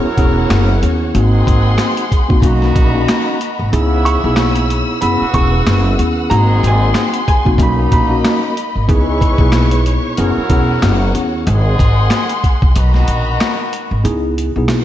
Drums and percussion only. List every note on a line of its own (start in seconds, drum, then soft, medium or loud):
0.17 kick loud
0.17 closed hi-hat medium
0.50 finger snap medium
0.50 cross-stick loud
0.50 snare loud
0.50 closed hi-hat loud
0.83 closed hi-hat medium
1.15 closed hi-hat medium
1.47 kick medium
1.47 closed hi-hat medium
1.78 finger snap medium
1.78 cross-stick medium
1.78 snare loud
1.78 closed hi-hat medium
1.97 closed hi-hat medium
2.12 kick medium
2.12 closed hi-hat medium
2.30 kick loud
2.42 kick loud
2.42 closed hi-hat loud
2.62 snare soft
2.76 kick medium
2.76 closed hi-hat medium
3.08 finger snap medium
3.08 cross-stick loud
3.08 snare loud
3.08 closed hi-hat loud
3.41 closed hi-hat medium
3.73 closed hi-hat medium
4.06 closed hi-hat medium
4.36 finger snap medium
4.36 cross-stick medium
4.36 snare loud
4.36 closed hi-hat medium
4.56 closed hi-hat medium
4.70 closed hi-hat medium
5.02 closed hi-hat loud
5.34 kick medium
5.34 closed hi-hat medium
5.67 finger snap medium
5.67 cross-stick loud
5.67 snare loud
5.67 closed hi-hat loud
5.99 closed hi-hat medium
6.31 closed hi-hat medium
6.64 closed hi-hat medium
6.94 finger snap medium
6.94 cross-stick medium
6.94 snare loud
6.94 closed hi-hat loud
7.14 closed hi-hat medium
7.28 kick medium
7.28 closed hi-hat medium
7.46 kick loud
7.58 kick loud
7.58 closed hi-hat loud
7.92 kick medium
7.92 closed hi-hat medium
8.24 finger snap medium
8.24 cross-stick loud
8.24 snare loud
8.24 closed hi-hat loud
8.57 closed hi-hat medium
8.89 kick loud
8.89 closed hi-hat medium
9.21 kick loud
9.21 closed hi-hat medium
9.38 kick loud
9.52 finger snap medium
9.52 cross-stick medium
9.52 snare loud
9.52 closed hi-hat loud
9.71 closed hi-hat medium
9.86 closed hi-hat medium
10.17 closed hi-hat loud
10.50 kick medium
10.50 closed hi-hat medium
10.82 finger snap medium
10.82 cross-stick loud
10.82 snare loud
10.82 closed hi-hat loud
11.15 closed hi-hat medium
11.47 closed hi-hat medium
11.79 kick loud
11.79 closed hi-hat medium
12.10 finger snap medium
12.10 cross-stick medium
12.10 snare loud
12.10 closed hi-hat loud
12.29 closed hi-hat medium
12.44 kick medium
12.44 closed hi-hat medium
12.62 kick loud
12.76 closed hi-hat loud
12.94 snare soft
13.08 closed hi-hat medium
13.40 finger snap medium
13.40 cross-stick loud
13.40 snare loud
13.40 closed hi-hat loud
13.73 closed hi-hat medium
14.05 closed hi-hat medium
14.38 closed hi-hat medium
14.68 cross-stick medium
14.68 snare loud
14.68 closed hi-hat medium